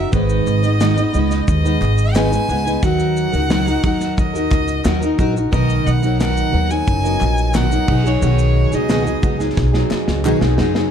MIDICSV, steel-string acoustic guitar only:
0, 0, Header, 1, 2, 480
1, 0, Start_track
1, 0, Key_signature, 5, "major"
1, 0, Tempo, 674157
1, 92, Time_signature, 4, 2, 24, 8
1, 7767, End_track
2, 0, Start_track
2, 0, Title_t, "Steel-string acoustic guitar"
2, 0, Program_c, 0, 25
2, 0, Note_on_c, 0, 63, 37
2, 0, Note_on_c, 0, 66, 42
2, 0, Note_on_c, 0, 70, 48
2, 82, Note_on_c, 0, 44, 78
2, 85, Note_on_c, 0, 51, 75
2, 86, Note_off_c, 0, 63, 0
2, 86, Note_off_c, 0, 70, 0
2, 89, Note_on_c, 0, 56, 80
2, 91, Note_off_c, 0, 66, 0
2, 91, Note_on_c, 0, 59, 72
2, 95, Note_on_c, 0, 63, 78
2, 95, Note_on_c, 0, 71, 84
2, 436, Note_off_c, 0, 71, 0
2, 444, Note_on_c, 0, 71, 57
2, 446, Note_off_c, 0, 63, 0
2, 447, Note_off_c, 0, 44, 0
2, 448, Note_off_c, 0, 51, 0
2, 450, Note_off_c, 0, 56, 0
2, 451, Note_off_c, 0, 59, 0
2, 455, Note_on_c, 0, 63, 49
2, 460, Note_on_c, 0, 59, 50
2, 468, Note_on_c, 0, 56, 48
2, 563, Note_off_c, 0, 56, 0
2, 565, Note_on_c, 0, 44, 67
2, 567, Note_off_c, 0, 59, 0
2, 568, Note_off_c, 0, 71, 0
2, 570, Note_off_c, 0, 63, 0
2, 570, Note_on_c, 0, 51, 80
2, 572, Note_on_c, 0, 56, 71
2, 575, Note_on_c, 0, 59, 75
2, 579, Note_on_c, 0, 63, 75
2, 581, Note_on_c, 0, 71, 79
2, 677, Note_off_c, 0, 71, 0
2, 685, Note_off_c, 0, 63, 0
2, 686, Note_on_c, 0, 71, 51
2, 688, Note_off_c, 0, 44, 0
2, 691, Note_off_c, 0, 51, 0
2, 692, Note_off_c, 0, 56, 0
2, 693, Note_on_c, 0, 63, 54
2, 694, Note_off_c, 0, 59, 0
2, 703, Note_on_c, 0, 59, 46
2, 707, Note_on_c, 0, 56, 45
2, 800, Note_off_c, 0, 56, 0
2, 807, Note_off_c, 0, 59, 0
2, 809, Note_off_c, 0, 71, 0
2, 809, Note_on_c, 0, 56, 65
2, 813, Note_off_c, 0, 63, 0
2, 816, Note_on_c, 0, 59, 64
2, 822, Note_on_c, 0, 63, 66
2, 829, Note_on_c, 0, 71, 72
2, 1156, Note_off_c, 0, 71, 0
2, 1165, Note_off_c, 0, 63, 0
2, 1165, Note_on_c, 0, 71, 54
2, 1170, Note_off_c, 0, 59, 0
2, 1171, Note_off_c, 0, 56, 0
2, 1173, Note_on_c, 0, 63, 47
2, 1179, Note_on_c, 0, 59, 47
2, 1186, Note_on_c, 0, 56, 40
2, 1524, Note_off_c, 0, 56, 0
2, 1524, Note_on_c, 0, 44, 72
2, 1526, Note_off_c, 0, 59, 0
2, 1527, Note_off_c, 0, 63, 0
2, 1529, Note_off_c, 0, 71, 0
2, 1529, Note_on_c, 0, 51, 74
2, 1532, Note_on_c, 0, 56, 74
2, 1534, Note_on_c, 0, 59, 82
2, 1536, Note_on_c, 0, 63, 86
2, 1538, Note_on_c, 0, 71, 86
2, 1637, Note_off_c, 0, 71, 0
2, 1643, Note_off_c, 0, 63, 0
2, 1645, Note_on_c, 0, 71, 58
2, 1648, Note_off_c, 0, 44, 0
2, 1651, Note_off_c, 0, 51, 0
2, 1651, Note_on_c, 0, 63, 46
2, 1652, Note_off_c, 0, 56, 0
2, 1653, Note_off_c, 0, 59, 0
2, 1661, Note_on_c, 0, 59, 49
2, 1668, Note_on_c, 0, 56, 41
2, 1759, Note_off_c, 0, 56, 0
2, 1765, Note_off_c, 0, 59, 0
2, 1768, Note_on_c, 0, 56, 59
2, 1769, Note_off_c, 0, 71, 0
2, 1772, Note_off_c, 0, 63, 0
2, 1774, Note_on_c, 0, 59, 66
2, 1780, Note_on_c, 0, 63, 61
2, 1788, Note_on_c, 0, 71, 65
2, 1879, Note_off_c, 0, 71, 0
2, 1887, Note_off_c, 0, 63, 0
2, 1888, Note_on_c, 0, 71, 54
2, 1890, Note_off_c, 0, 56, 0
2, 1893, Note_off_c, 0, 59, 0
2, 1896, Note_on_c, 0, 63, 51
2, 1903, Note_on_c, 0, 59, 49
2, 1907, Note_on_c, 0, 56, 41
2, 2010, Note_off_c, 0, 63, 0
2, 2010, Note_off_c, 0, 71, 0
2, 2011, Note_off_c, 0, 56, 0
2, 2011, Note_on_c, 0, 51, 73
2, 2013, Note_on_c, 0, 54, 83
2, 2016, Note_off_c, 0, 59, 0
2, 2019, Note_on_c, 0, 63, 79
2, 2023, Note_on_c, 0, 66, 86
2, 2024, Note_on_c, 0, 70, 89
2, 2357, Note_off_c, 0, 70, 0
2, 2365, Note_on_c, 0, 70, 55
2, 2369, Note_off_c, 0, 66, 0
2, 2372, Note_off_c, 0, 51, 0
2, 2373, Note_off_c, 0, 54, 0
2, 2376, Note_off_c, 0, 63, 0
2, 2377, Note_on_c, 0, 66, 52
2, 2387, Note_on_c, 0, 63, 46
2, 2484, Note_off_c, 0, 63, 0
2, 2485, Note_on_c, 0, 51, 72
2, 2487, Note_off_c, 0, 66, 0
2, 2489, Note_off_c, 0, 70, 0
2, 2490, Note_on_c, 0, 54, 75
2, 2493, Note_on_c, 0, 63, 81
2, 2495, Note_on_c, 0, 66, 79
2, 2498, Note_on_c, 0, 70, 87
2, 2594, Note_off_c, 0, 70, 0
2, 2603, Note_on_c, 0, 70, 60
2, 2607, Note_off_c, 0, 66, 0
2, 2609, Note_off_c, 0, 51, 0
2, 2611, Note_off_c, 0, 54, 0
2, 2613, Note_off_c, 0, 63, 0
2, 2616, Note_on_c, 0, 66, 51
2, 2623, Note_on_c, 0, 63, 48
2, 2726, Note_on_c, 0, 54, 60
2, 2727, Note_off_c, 0, 63, 0
2, 2728, Note_off_c, 0, 70, 0
2, 2733, Note_off_c, 0, 66, 0
2, 2736, Note_on_c, 0, 63, 67
2, 2741, Note_on_c, 0, 66, 72
2, 2747, Note_on_c, 0, 70, 71
2, 3079, Note_off_c, 0, 70, 0
2, 3087, Note_on_c, 0, 70, 55
2, 3090, Note_off_c, 0, 54, 0
2, 3091, Note_off_c, 0, 66, 0
2, 3094, Note_off_c, 0, 63, 0
2, 3099, Note_on_c, 0, 66, 48
2, 3110, Note_on_c, 0, 63, 47
2, 3447, Note_on_c, 0, 51, 74
2, 3448, Note_off_c, 0, 63, 0
2, 3450, Note_off_c, 0, 66, 0
2, 3450, Note_off_c, 0, 70, 0
2, 3453, Note_on_c, 0, 54, 81
2, 3457, Note_on_c, 0, 63, 84
2, 3459, Note_on_c, 0, 66, 83
2, 3460, Note_on_c, 0, 70, 83
2, 3559, Note_off_c, 0, 70, 0
2, 3567, Note_on_c, 0, 70, 61
2, 3568, Note_off_c, 0, 66, 0
2, 3570, Note_off_c, 0, 51, 0
2, 3573, Note_off_c, 0, 54, 0
2, 3575, Note_off_c, 0, 63, 0
2, 3576, Note_on_c, 0, 66, 57
2, 3586, Note_on_c, 0, 63, 51
2, 3686, Note_off_c, 0, 63, 0
2, 3687, Note_on_c, 0, 54, 72
2, 3690, Note_off_c, 0, 70, 0
2, 3692, Note_off_c, 0, 66, 0
2, 3695, Note_on_c, 0, 63, 75
2, 3701, Note_on_c, 0, 66, 80
2, 3706, Note_on_c, 0, 70, 80
2, 3797, Note_off_c, 0, 70, 0
2, 3806, Note_on_c, 0, 70, 51
2, 3807, Note_off_c, 0, 66, 0
2, 3810, Note_off_c, 0, 54, 0
2, 3814, Note_off_c, 0, 63, 0
2, 3816, Note_on_c, 0, 66, 45
2, 3826, Note_on_c, 0, 63, 44
2, 3922, Note_on_c, 0, 47, 79
2, 3926, Note_off_c, 0, 63, 0
2, 3927, Note_on_c, 0, 51, 80
2, 3929, Note_off_c, 0, 70, 0
2, 3930, Note_on_c, 0, 54, 75
2, 3930, Note_on_c, 0, 59, 87
2, 3932, Note_off_c, 0, 66, 0
2, 3935, Note_on_c, 0, 63, 85
2, 3937, Note_on_c, 0, 70, 89
2, 4278, Note_off_c, 0, 70, 0
2, 4285, Note_off_c, 0, 63, 0
2, 4287, Note_on_c, 0, 70, 57
2, 4288, Note_off_c, 0, 47, 0
2, 4290, Note_off_c, 0, 51, 0
2, 4292, Note_off_c, 0, 54, 0
2, 4292, Note_off_c, 0, 59, 0
2, 4293, Note_on_c, 0, 63, 48
2, 4301, Note_on_c, 0, 59, 54
2, 4308, Note_on_c, 0, 54, 48
2, 4407, Note_off_c, 0, 54, 0
2, 4409, Note_off_c, 0, 59, 0
2, 4409, Note_on_c, 0, 47, 71
2, 4410, Note_off_c, 0, 70, 0
2, 4411, Note_off_c, 0, 63, 0
2, 4412, Note_on_c, 0, 51, 84
2, 4416, Note_on_c, 0, 54, 83
2, 4418, Note_on_c, 0, 59, 74
2, 4420, Note_on_c, 0, 63, 80
2, 4422, Note_on_c, 0, 70, 87
2, 4636, Note_off_c, 0, 54, 0
2, 4645, Note_on_c, 0, 54, 64
2, 4646, Note_off_c, 0, 59, 0
2, 4651, Note_off_c, 0, 47, 0
2, 4652, Note_off_c, 0, 51, 0
2, 4654, Note_off_c, 0, 63, 0
2, 4655, Note_on_c, 0, 59, 57
2, 4657, Note_off_c, 0, 70, 0
2, 4662, Note_on_c, 0, 63, 67
2, 4668, Note_on_c, 0, 70, 61
2, 4758, Note_off_c, 0, 70, 0
2, 4765, Note_off_c, 0, 63, 0
2, 4766, Note_on_c, 0, 70, 49
2, 4769, Note_off_c, 0, 54, 0
2, 4774, Note_off_c, 0, 59, 0
2, 4774, Note_on_c, 0, 63, 51
2, 4782, Note_on_c, 0, 59, 46
2, 4786, Note_on_c, 0, 54, 40
2, 4997, Note_off_c, 0, 70, 0
2, 5005, Note_off_c, 0, 63, 0
2, 5005, Note_on_c, 0, 70, 49
2, 5011, Note_off_c, 0, 59, 0
2, 5014, Note_on_c, 0, 63, 52
2, 5017, Note_off_c, 0, 54, 0
2, 5020, Note_on_c, 0, 59, 50
2, 5025, Note_on_c, 0, 54, 44
2, 5361, Note_off_c, 0, 54, 0
2, 5362, Note_on_c, 0, 47, 75
2, 5364, Note_off_c, 0, 59, 0
2, 5366, Note_off_c, 0, 63, 0
2, 5368, Note_on_c, 0, 51, 74
2, 5369, Note_off_c, 0, 70, 0
2, 5370, Note_on_c, 0, 54, 85
2, 5373, Note_on_c, 0, 59, 77
2, 5375, Note_on_c, 0, 63, 83
2, 5378, Note_on_c, 0, 70, 84
2, 5476, Note_off_c, 0, 70, 0
2, 5484, Note_off_c, 0, 63, 0
2, 5485, Note_on_c, 0, 70, 53
2, 5487, Note_off_c, 0, 47, 0
2, 5490, Note_off_c, 0, 51, 0
2, 5491, Note_off_c, 0, 54, 0
2, 5492, Note_on_c, 0, 63, 50
2, 5493, Note_off_c, 0, 59, 0
2, 5501, Note_on_c, 0, 59, 48
2, 5507, Note_on_c, 0, 54, 43
2, 5598, Note_off_c, 0, 54, 0
2, 5607, Note_on_c, 0, 54, 61
2, 5608, Note_off_c, 0, 59, 0
2, 5609, Note_off_c, 0, 70, 0
2, 5613, Note_off_c, 0, 63, 0
2, 5616, Note_on_c, 0, 59, 70
2, 5622, Note_on_c, 0, 63, 68
2, 5630, Note_on_c, 0, 68, 70
2, 5717, Note_off_c, 0, 68, 0
2, 5725, Note_off_c, 0, 63, 0
2, 5726, Note_on_c, 0, 68, 51
2, 5730, Note_off_c, 0, 54, 0
2, 5730, Note_off_c, 0, 59, 0
2, 5733, Note_on_c, 0, 63, 50
2, 5738, Note_on_c, 0, 59, 44
2, 5746, Note_on_c, 0, 54, 41
2, 5845, Note_on_c, 0, 47, 77
2, 5846, Note_off_c, 0, 54, 0
2, 5847, Note_off_c, 0, 59, 0
2, 5850, Note_off_c, 0, 63, 0
2, 5850, Note_off_c, 0, 68, 0
2, 5851, Note_on_c, 0, 51, 76
2, 5854, Note_on_c, 0, 54, 71
2, 5855, Note_on_c, 0, 59, 80
2, 5858, Note_on_c, 0, 63, 78
2, 5861, Note_on_c, 0, 68, 81
2, 6199, Note_off_c, 0, 68, 0
2, 6208, Note_off_c, 0, 63, 0
2, 6208, Note_on_c, 0, 68, 51
2, 6209, Note_off_c, 0, 47, 0
2, 6212, Note_off_c, 0, 51, 0
2, 6214, Note_off_c, 0, 54, 0
2, 6214, Note_off_c, 0, 59, 0
2, 6217, Note_on_c, 0, 63, 49
2, 6222, Note_on_c, 0, 59, 49
2, 6228, Note_on_c, 0, 54, 45
2, 6326, Note_off_c, 0, 54, 0
2, 6330, Note_off_c, 0, 59, 0
2, 6330, Note_on_c, 0, 47, 77
2, 6331, Note_off_c, 0, 68, 0
2, 6333, Note_on_c, 0, 51, 70
2, 6335, Note_off_c, 0, 63, 0
2, 6335, Note_on_c, 0, 54, 73
2, 6338, Note_on_c, 0, 59, 74
2, 6342, Note_on_c, 0, 63, 89
2, 6345, Note_on_c, 0, 68, 81
2, 6433, Note_off_c, 0, 68, 0
2, 6442, Note_off_c, 0, 63, 0
2, 6442, Note_on_c, 0, 68, 46
2, 6450, Note_off_c, 0, 59, 0
2, 6450, Note_on_c, 0, 63, 45
2, 6452, Note_off_c, 0, 47, 0
2, 6453, Note_off_c, 0, 51, 0
2, 6454, Note_off_c, 0, 54, 0
2, 6459, Note_on_c, 0, 59, 43
2, 6462, Note_on_c, 0, 54, 41
2, 6554, Note_off_c, 0, 54, 0
2, 6561, Note_off_c, 0, 59, 0
2, 6563, Note_on_c, 0, 54, 63
2, 6568, Note_off_c, 0, 68, 0
2, 6569, Note_off_c, 0, 63, 0
2, 6569, Note_on_c, 0, 59, 59
2, 6578, Note_on_c, 0, 63, 66
2, 6583, Note_on_c, 0, 68, 63
2, 6677, Note_off_c, 0, 68, 0
2, 6683, Note_off_c, 0, 63, 0
2, 6686, Note_on_c, 0, 68, 49
2, 6688, Note_off_c, 0, 54, 0
2, 6691, Note_off_c, 0, 59, 0
2, 6692, Note_on_c, 0, 63, 47
2, 6701, Note_on_c, 0, 59, 39
2, 6706, Note_on_c, 0, 54, 38
2, 6919, Note_off_c, 0, 68, 0
2, 6927, Note_off_c, 0, 63, 0
2, 6928, Note_on_c, 0, 68, 58
2, 6934, Note_off_c, 0, 59, 0
2, 6936, Note_on_c, 0, 63, 57
2, 6938, Note_off_c, 0, 54, 0
2, 6942, Note_on_c, 0, 59, 51
2, 6947, Note_on_c, 0, 54, 48
2, 7289, Note_off_c, 0, 54, 0
2, 7290, Note_on_c, 0, 47, 87
2, 7291, Note_off_c, 0, 68, 0
2, 7292, Note_off_c, 0, 59, 0
2, 7293, Note_off_c, 0, 63, 0
2, 7294, Note_on_c, 0, 51, 87
2, 7298, Note_on_c, 0, 54, 90
2, 7300, Note_on_c, 0, 59, 95
2, 7301, Note_on_c, 0, 63, 84
2, 7304, Note_on_c, 0, 68, 89
2, 7398, Note_off_c, 0, 68, 0
2, 7406, Note_on_c, 0, 68, 57
2, 7407, Note_off_c, 0, 63, 0
2, 7412, Note_off_c, 0, 47, 0
2, 7414, Note_off_c, 0, 51, 0
2, 7415, Note_off_c, 0, 59, 0
2, 7415, Note_on_c, 0, 63, 58
2, 7416, Note_off_c, 0, 54, 0
2, 7424, Note_on_c, 0, 59, 51
2, 7428, Note_on_c, 0, 54, 45
2, 7519, Note_off_c, 0, 54, 0
2, 7526, Note_off_c, 0, 59, 0
2, 7527, Note_on_c, 0, 54, 64
2, 7530, Note_off_c, 0, 68, 0
2, 7533, Note_off_c, 0, 63, 0
2, 7535, Note_on_c, 0, 59, 73
2, 7541, Note_on_c, 0, 63, 68
2, 7548, Note_on_c, 0, 68, 78
2, 7639, Note_off_c, 0, 68, 0
2, 7647, Note_on_c, 0, 68, 58
2, 7648, Note_off_c, 0, 63, 0
2, 7651, Note_off_c, 0, 54, 0
2, 7655, Note_off_c, 0, 59, 0
2, 7657, Note_on_c, 0, 63, 51
2, 7664, Note_on_c, 0, 59, 47
2, 7668, Note_on_c, 0, 54, 49
2, 7767, Note_off_c, 0, 54, 0
2, 7767, Note_off_c, 0, 59, 0
2, 7767, Note_off_c, 0, 63, 0
2, 7767, Note_off_c, 0, 68, 0
2, 7767, End_track
0, 0, End_of_file